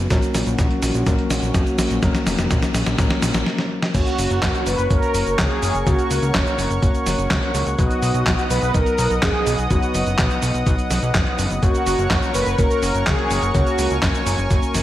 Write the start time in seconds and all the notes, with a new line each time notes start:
0.10 A#1 F#3 A#3 C#4 F#4 A#4, kick, snare, closed hi-hat, cabasa
0.22 closed hi-hat, cabasa
0.35 A#1, snare, open hi-hat, cabasa
0.47 A#1, closed hi-hat, cabasa
0.59 A#1, kick, snare, closed hi-hat, cabasa
0.71 closed hi-hat
0.82 A#1, snare, open hi-hat, cabasa
0.95 A#1, closed hi-hat, cabasa
1.06 A#1 F#3 A#3 C#4 A#4, kick, snare, closed hi-hat, cabasa
1.19 closed hi-hat
1.30 A#1, snare, open hi-hat, cabasa
1.42 A#1, closed hi-hat, cabasa
1.54 F2, kick, snare, closed hi-hat, cabasa
1.67 closed hi-hat, cabasa
1.78 A#1, snare, open hi-hat, cabasa
1.90 A#1, closed hi-hat, cabasa
2.02 F1 F#3 A#3 C#4 A#4, kick, snare, closed hi-hat, cabasa
2.15 snare, closed hi-hat, cabasa
2.27 F1, snare, open hi-hat, cabasa
2.39 F1, snare, closed hi-hat, cabasa
2.50 A#1, kick, snare, closed hi-hat, cabasa
2.62 snare, closed hi-hat, cabasa
2.74 A#1, snare, open hi-hat, cabasa
2.86 A#1, snare, cabasa
2.98 A#1 F#3 A#3 C#4 A#4, kick, snare, closed hi-hat, cabasa
3.11 snare, closed hi-hat
3.22 A#1, snare, open hi-hat, cabasa
3.34 A#1, snare, closed hi-hat, cabasa
3.47 snare
3.59 snare
3.82 snare
3.94 F#1 A#3 C#4 F#4 A#4 C#5 F#5 C#6, kick, closed hi-hat, crash, cabasa
4.07 closed hi-hat, cabasa
4.18 F#1, open hi-hat, cabasa
4.30 F#1, closed hi-hat, cabasa
4.42 F#1, kick, snare, clap, closed hi-hat, cabasa
4.54 closed hi-hat, cabasa
4.66 F#1 B4, open hi-hat, cabasa
4.78 F#1, closed hi-hat, cabasa
4.91 F#1 A#3 C#4 F#4 A#4 C#5, kick, closed hi-hat, cabasa
5.03 closed hi-hat, cabasa
5.15 F#1, open hi-hat, cabasa
5.27 F#1, closed hi-hat, cabasa
5.39 C#2 G#4, kick, snare, clap, closed hi-hat, cabasa
5.51 closed hi-hat
5.63 F#1, open hi-hat, cabasa
5.75 F#1, closed hi-hat, cabasa
5.87 C#2 A#3 C#4 F#4 C#5, kick, closed hi-hat, cabasa
5.99 closed hi-hat, cabasa
6.11 C#2, open hi-hat, cabasa
6.22 C#2, closed hi-hat, cabasa
6.35 F#1, kick, snare, clap, closed hi-hat, cabasa
6.47 closed hi-hat, cabasa
6.58 F#1, open hi-hat, cabasa
6.70 F#1, closed hi-hat, cabasa
6.82 F#1 A#3 C#4 F#4 C#5, kick, closed hi-hat, cabasa
6.95 closed hi-hat, cabasa
7.06 F#1, snare, open hi-hat, cabasa
7.18 F#1, closed hi-hat, cabasa
7.31 C#2, kick, snare, clap, closed hi-hat, cabasa
7.43 closed hi-hat
7.54 C#2, open hi-hat, cabasa
7.66 C#2, closed hi-hat, cabasa
7.78 B1 F#3 B3 D#4 F#4 B4 D#5 D#6, kick, closed hi-hat, cabasa
7.91 closed hi-hat, cabasa
8.02 B1, open hi-hat, cabasa
8.14 B1, closed hi-hat, cabasa
8.27 B1, kick, snare, clap, closed hi-hat, cabasa
8.39 closed hi-hat, cabasa
8.50 B1 B4, open hi-hat, cabasa
8.62 B1, closed hi-hat, cabasa
8.74 B1 F#3 B3 D#4 A#4 D#5, kick, closed hi-hat, cabasa
8.86 closed hi-hat, cabasa
8.98 B1, open hi-hat, cabasa
9.10 B1, closed hi-hat, cabasa
9.22 F#1 G#4, kick, snare, clap, closed hi-hat, cabasa
9.34 closed hi-hat
9.46 B1, open hi-hat, cabasa
9.59 B1, closed hi-hat, cabasa
9.70 F#1 F#3 B3 D#4 F#4 B4, kick, closed hi-hat, cabasa
9.82 closed hi-hat, cabasa
9.94 F#1, open hi-hat, cabasa
10.06 F#1, closed hi-hat, cabasa
10.18 B1, kick, snare, clap, closed hi-hat, cabasa
10.30 closed hi-hat, cabasa
10.42 B1, open hi-hat, cabasa
10.55 B1, closed hi-hat, cabasa
10.67 B1 F#3 B3 D#4 B4, kick, closed hi-hat, cabasa
10.79 closed hi-hat, cabasa
10.91 B1, snare, open hi-hat, cabasa
11.03 B1, closed hi-hat, cabasa
11.14 F#1, kick, snare, clap, closed hi-hat, cabasa
11.27 closed hi-hat
11.39 F#1, open hi-hat, cabasa
11.51 F#1, closed hi-hat, cabasa
11.62 F#1 A#3 C#4 F#4 A#4 C#5 C#6, kick, closed hi-hat, cabasa
11.75 closed hi-hat, cabasa
11.86 F#1, open hi-hat, cabasa
11.99 F#1, closed hi-hat, cabasa
12.11 F#1, kick, snare, clap, closed hi-hat, cabasa
12.23 closed hi-hat, cabasa
12.34 F#1 B4, open hi-hat, cabasa
12.47 F#1, closed hi-hat, cabasa
12.58 F#1 A#3 C#4 F#4 A#4 C#5, kick, closed hi-hat, cabasa
12.71 closed hi-hat, cabasa
12.83 F#1, open hi-hat, cabasa
12.94 F#1, closed hi-hat, cabasa
13.06 C#2 G#4, kick, snare, clap, closed hi-hat, cabasa
13.19 closed hi-hat
13.30 F#1, open hi-hat, cabasa
13.43 F#1, closed hi-hat, cabasa
13.54 C#2 A#3 C#4 F#4 C#5 G#5, kick, closed hi-hat, cabasa
13.67 closed hi-hat, cabasa
13.79 C#2, open hi-hat, cabasa
13.91 C#2, closed hi-hat, cabasa
14.03 F#1, kick, snare, clap, closed hi-hat, cabasa
14.15 closed hi-hat, cabasa
14.27 F#1, open hi-hat, cabasa
14.38 F#1, closed hi-hat, cabasa
14.51 F#1 A#3 C#4 F#4 C#5, kick, closed hi-hat, cabasa
14.63 closed hi-hat, cabasa
14.74 F#1, snare, open hi-hat, cabasa